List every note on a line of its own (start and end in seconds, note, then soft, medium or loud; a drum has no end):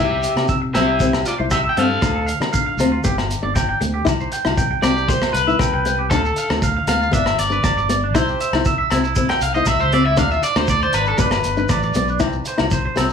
0.00 0.26 C2 loud
0.00 0.13 E4 medium
0.00 0.46 G4 medium
0.00 0.45 E5 loud
0.11 0.21 G4 medium
0.23 closed hi-hat medium
0.23 shekere medium
0.36 0.76 C3 medium
0.36 cross-stick medium
0.36 low agogo medium
0.48 0.60 E5 medium
0.48 kick medium
0.48 shekere medium
0.62 muted clean electric guitar stroke medium
0.74 1.23 C2 medium
0.74 0.90 C4 medium
0.74 0.86 E4 medium
0.74 1.22 G4 medium
0.74 1.22 E5 medium
0.74 cross-stick medium
0.74 closed hi-hat soft
0.74 low agogo medium
0.74 shekere medium
0.88 0.98 E4 medium
1.00 1.15 C4 medium
1.00 1.11 E4 medium
1.00 kick medium
1.00 shekere loud
1.13 cross-stick medium
1.13 low agogo medium
1.26 1.33 F4 medium
1.26 1.34 D5 medium
1.26 closed hi-hat soft
1.26 shekere medium
1.38 1.68 C2 medium
1.38 1.54 E4 medium
1.38 1.49 C5 medium
1.51 1.57 G4 medium
1.51 1.62 E5 medium
1.51 1.58 E5 loud
1.51 kick medium
1.51 cross-stick medium
1.51 low agogo medium
1.51 shekere loud
1.64 1.75 E5 medium
1.69 1.77 G5 medium
1.77 1.97 G2 medium
1.77 1.92 C4 medium
1.77 2.25 A4 medium
1.77 1.88 E5 medium
1.77 2.26 F5 medium
1.77 closed hi-hat soft
1.90 muted clean electric guitar stroke medium
2.01 2.31 D2 medium
2.01 2.17 D4 medium
2.01 2.13 F4 medium
2.01 kick medium
2.01 cross-stick medium
2.01 low agogo medium
2.01 shekere medium
2.15 2.26 A4 medium
2.26 2.38 F5 medium
2.26 closed hi-hat soft
2.26 shekere medium
2.40 2.79 D3 medium
2.40 2.55 D4 medium
2.40 cross-stick medium
2.40 low agogo medium
2.53 2.64 F5 medium
2.53 kick medium
2.53 shekere medium
2.66 2.77 F5 medium
2.77 2.97 D2 medium
2.77 2.94 C4 medium
2.77 2.90 F4 medium
2.77 closed hi-hat soft
2.77 low agogo medium
2.77 shekere medium
2.92 3.03 F4 medium
3.04 3.34 G1 medium
3.04 3.19 B3 medium
3.04 3.16 G4 medium
3.04 kick medium
3.04 shekere loud
3.18 cross-stick medium
3.18 low agogo medium
3.31 closed hi-hat soft
3.31 shekere medium
3.42 3.72 G1 medium
3.42 3.57 D4 medium
3.42 3.54 D5 medium
3.55 3.67 G5 medium
3.55 kick medium
3.55 cross-stick medium
3.55 low agogo medium
3.55 shekere loud
3.69 3.80 G5 medium
3.81 4.01 D2 medium
3.81 3.96 B3 medium
3.81 muted clean electric guitar stroke medium
3.81 closed hi-hat soft
3.81 shekere medium
3.94 4.05 G4 medium
4.05 4.26 C2 loud
4.05 4.20 E4 medium
4.05 muted clean electric guitar stroke medium
4.05 kick medium
4.05 cross-stick medium
4.05 low agogo medium
4.05 shekere medium
4.20 4.31 C5 medium
4.20 shekere soft
4.32 4.44 G5 medium
4.32 closed hi-hat soft
4.32 shekere medium
4.45 4.75 C2 medium
4.45 4.60 E4 medium
4.45 cross-stick medium
4.45 low agogo medium
4.58 4.69 G5 medium
4.58 kick medium
4.58 shekere medium
4.71 4.82 G5 medium
4.82 5.22 C2 medium
4.82 4.97 C4 medium
4.82 4.95 G4 medium
4.82 5.08 D5 medium
4.82 cross-stick medium
4.82 closed hi-hat soft
4.82 low agogo medium
4.82 shekere medium
4.97 5.08 G4 medium
4.97 shekere soft
5.08 5.33 C5 medium
5.08 muted steel-string acoustic guitar stroke medium
5.08 muted clean electric guitar stroke medium
5.08 kick medium
5.08 shekere loud
5.22 cross-stick medium
5.22 low agogo medium
5.33 5.54 C2 medium
5.33 6.07 B4 medium
5.33 closed hi-hat soft
5.33 shekere medium
5.47 5.62 E4 medium
5.47 5.58 E5 medium
5.47 shekere soft
5.59 5.70 C2 medium
5.59 5.71 G5 medium
5.59 kick medium
5.59 cross-stick medium
5.59 low agogo medium
5.59 shekere loud
5.73 6.11 C2 medium
5.73 5.84 G5 medium
5.85 5.97 G5 medium
5.85 muted steel-string acoustic guitar stroke medium
5.85 closed hi-hat soft
5.85 shekere medium
5.99 6.10 G4 medium
6.10 6.30 D2 medium
6.10 6.27 D4 medium
6.10 6.23 F4 medium
6.10 6.58 A4 medium
6.10 kick medium
6.10 cross-stick medium
6.10 low agogo medium
6.10 shekere medium
6.25 6.36 A4 medium
6.25 shekere soft
6.36 6.49 F5 medium
6.36 closed hi-hat medium
6.36 shekere medium
6.50 6.79 D2 medium
6.50 6.64 D4 medium
6.50 cross-stick medium
6.50 low agogo medium
6.62 6.74 F5 medium
6.62 kick medium
6.62 shekere medium
6.77 6.87 F5 medium
6.87 7.07 D2 medium
6.87 7.02 B3 medium
6.87 7.00 F4 medium
6.87 7.13 F5 loud
6.87 closed hi-hat medium
6.87 low agogo medium
6.87 shekere medium
7.01 7.12 F4 medium
7.01 shekere soft
7.11 7.32 G1 loud
7.11 7.26 B3 medium
7.11 7.25 D4 medium
7.11 7.38 E5 medium
7.11 kick medium
7.11 shekere loud
7.26 cross-stick medium
7.26 low agogo medium
7.39 7.58 G1 medium
7.39 8.12 D5 medium
7.39 closed hi-hat medium
7.39 shekere medium
7.50 7.65 D4 medium
7.50 7.63 B4 medium
7.50 shekere soft
7.64 7.74 G1 medium
7.64 7.75 D5 medium
7.64 kick medium
7.64 cross-stick medium
7.64 low agogo medium
7.64 shekere medium
7.76 8.15 G1 medium
7.76 7.88 D5 medium
7.76 shekere soft
7.89 8.04 B3 medium
7.89 8.01 D5 medium
7.89 closed hi-hat soft
7.89 shekere medium
8.04 8.14 D4 medium
8.14 8.34 C2 medium
8.14 8.26 E4 medium
8.14 8.30 E4 medium
8.14 8.62 C5 medium
8.14 kick medium
8.14 cross-stick medium
8.14 low agogo medium
8.14 shekere loud
8.28 8.39 G4 medium
8.28 shekere soft
8.40 8.52 E5 medium
8.40 closed hi-hat soft
8.40 shekere medium
8.53 8.82 C2 medium
8.53 8.69 E4 medium
8.53 cross-stick medium
8.53 low agogo medium
8.65 8.77 E5 medium
8.65 kick medium
8.65 shekere medium
8.78 8.89 E5 medium
8.90 9.30 C2 medium
8.90 9.07 C4 medium
8.90 9.02 E4 medium
8.90 cross-stick medium
8.90 closed hi-hat medium
8.90 low agogo medium
8.90 shekere medium
9.04 9.15 E4 medium
9.04 shekere soft
9.16 9.31 C4 medium
9.16 9.28 E4 medium
9.16 kick medium
9.16 shekere loud
9.29 9.42 G5 medium
9.29 cross-stick medium
9.29 low agogo medium
9.41 9.61 C2 medium
9.41 9.54 F5 loud
9.41 closed hi-hat soft
9.41 shekere medium
9.54 9.70 E4 medium
9.54 9.66 C5 medium
9.54 9.67 D#5 medium
9.54 shekere soft
9.66 9.77 C2 medium
9.66 9.81 E5 loud
9.66 9.79 E5 medium
9.66 kick medium
9.66 cross-stick medium
9.66 low agogo medium
9.66 shekere loud
9.79 10.17 C#2 medium
9.79 9.93 C5 medium
9.79 9.91 E5 medium
9.79 shekere soft
9.92 10.07 C4 medium
9.92 10.05 D5 medium
9.92 10.05 E5 medium
9.92 closed hi-hat soft
10.05 10.17 E4 medium
10.05 10.18 E5 medium
10.17 10.37 D2 loud
10.17 10.32 D4 medium
10.17 10.29 D4 medium
10.17 10.31 F5 medium
10.17 kick medium
10.17 cross-stick medium
10.17 low agogo medium
10.17 shekere loud
10.31 10.42 F4 medium
10.31 10.43 E5 medium
10.31 shekere soft
10.43 10.57 D5 medium
10.43 10.55 D5 medium
10.43 closed hi-hat soft
10.43 shekere medium
10.56 10.85 D2 medium
10.56 10.71 D4 medium
10.56 10.69 C5 medium
10.56 cross-stick medium
10.56 low agogo medium
10.56 shekere soft
10.68 10.80 D5 medium
10.68 10.82 D5 medium
10.68 kick medium
10.68 shekere loud
10.82 10.95 C5 medium
10.82 10.93 D5 medium
10.82 shekere soft
10.93 11.13 G#1 medium
10.93 11.06 D4 medium
10.93 11.07 B4 medium
10.93 closed hi-hat soft
10.93 low agogo medium
10.93 shekere medium
11.06 11.18 D4 medium
11.06 11.20 A4 medium
11.06 shekere soft
11.18 11.38 G1 loud
11.18 11.33 B3 medium
11.18 11.31 D4 medium
11.18 12.72 B4 medium
11.18 kick medium
11.18 shekere loud
11.31 cross-stick medium
11.31 low agogo medium
11.31 shekere soft
11.44 11.64 G1 medium
11.44 closed hi-hat soft
11.44 shekere medium
11.57 11.72 D4 medium
11.57 11.69 B4 medium
11.57 shekere soft
11.69 11.93 A1 medium
11.69 11.82 D5 medium
11.69 kick medium
11.69 cross-stick medium
11.69 low agogo medium
11.69 shekere loud
11.82 11.94 D5 medium
11.82 shekere soft
11.94 12.20 B1 medium
11.94 12.10 B3 medium
11.94 12.07 D5 medium
11.94 closed hi-hat soft
11.94 shekere medium
12.08 12.20 D4 medium
12.08 shekere soft
12.20 12.40 C2 medium
12.20 12.33 C4 medium
12.20 12.34 E4 medium
12.20 kick medium
12.20 cross-stick medium
12.20 low agogo medium
12.20 shekere medium
12.32 shekere soft
12.45 12.58 C5 medium
12.45 closed hi-hat medium
12.45 shekere medium
12.58 12.88 C2 medium
12.58 12.72 E4 medium
12.58 cross-stick medium
12.58 low agogo medium
12.71 12.83 C5 medium
12.71 kick medium
12.71 shekere medium
12.86 12.96 C5 medium
12.96 13.13 C2 medium
12.96 13.10 C4 medium
12.96 13.08 C4 medium
12.96 cross-stick medium
12.96 closed hi-hat medium
12.96 low agogo medium
12.96 shekere medium
13.09 shekere soft